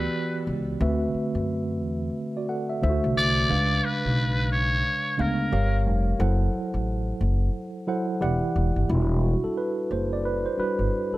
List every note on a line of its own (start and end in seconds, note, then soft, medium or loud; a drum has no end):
0.00 0.81 E3 medium
0.00 0.81 B3 medium
0.00 0.61 F#4 medium
0.00 0.81 G4 medium
0.00 0.47 B4 medium
0.00 0.81 D5 medium
0.00 0.81 F#5 medium
0.47 0.73 C#2 medium
0.80 1.07 D2 loud
0.80 1.86 D3 medium
0.80 1.86 A3 medium
0.80 1.86 C4 medium
0.80 1.86 F#4 medium
0.80 1.86 B4 medium
0.80 1.86 E5 medium
1.14 muted upright bass stroke soft
1.35 1.82 F#2 medium
1.82 2.08 E2 medium
2.37 2.49 F#4 medium
2.37 2.48 D5 medium
2.49 2.68 A4 medium
2.49 2.68 F#5 medium
2.70 2.82 E5 medium
2.82 2.99 D2 medium
2.82 3.39 D3 medium
2.82 3.39 A3 medium
2.82 2.90 E4 medium
2.82 3.39 C5 medium
2.82 3.40 E5 loud
2.89 3.42 F#4 medium
3.04 3.14 C2 medium
3.17 3.43 C2 medium
3.17 3.86 D5 loud
3.49 3.77 C#2 loud
3.49 4.55 C#3 medium
3.49 4.55 G#3 medium
3.49 4.55 D4 medium
3.49 4.55 B4 medium
3.49 4.56 F5 medium
3.85 4.51 B4 loud
4.05 4.81 B1 medium
4.52 5.22 C#5 loud
5.17 5.45 D2 medium
5.17 5.51 C#3 medium
5.17 5.52 G#3 medium
5.17 5.52 B3 medium
5.17 5.52 D4 medium
5.17 5.87 A#4 medium
5.17 5.52 F5 medium
5.52 5.86 G1 loud
5.52 6.08 G3 medium
5.52 6.09 G4 medium
5.52 6.09 A#4 medium
5.52 6.09 C#5 medium
5.52 6.09 F5 medium
5.86 6.13 F1 medium
6.19 6.46 F#1 loud
6.19 7.25 F#3 medium
6.19 7.25 E4 medium
6.19 7.25 A4 medium
6.19 7.25 C5 medium
6.19 7.26 F#5 medium
6.53 muted upright bass stroke soft
6.74 7.11 A1 medium
7.21 7.47 F#1 medium
7.87 8.21 F#3 medium
7.87 8.20 E4 medium
7.87 8.21 A4 medium
7.87 8.21 C5 medium
7.87 8.21 F#5 medium
8.21 8.38 E1 medium
8.21 8.78 E3 medium
8.21 8.78 E4 medium
8.21 8.78 G4 medium
8.21 8.78 D5 medium
8.21 8.79 F#5 loud
8.56 8.72 E1 medium
8.76 8.86 G1 medium
8.88 9.32 E1 loud
8.88 9.36 G3 soft
8.88 9.36 D4 soft
8.88 9.24 E4 medium
8.88 9.22 F#4 medium
9.23 9.42 F#4 medium
9.44 9.56 A4 medium
9.44 muted upright bass stroke soft
9.57 9.91 B4 medium
9.91 10.44 F#1 medium
9.91 10.12 C5 medium
10.13 10.25 D5 medium
10.25 10.45 B4 medium
10.46 10.57 C5 medium
10.58 10.88 G3 soft
10.58 10.88 D4 soft
10.58 10.88 F#4 medium
10.58 11.14 B4 medium
10.58 muted upright bass stroke soft
10.79 10.89 G1 medium
11.12 11.18 A4 medium
11.12 muted upright bass stroke soft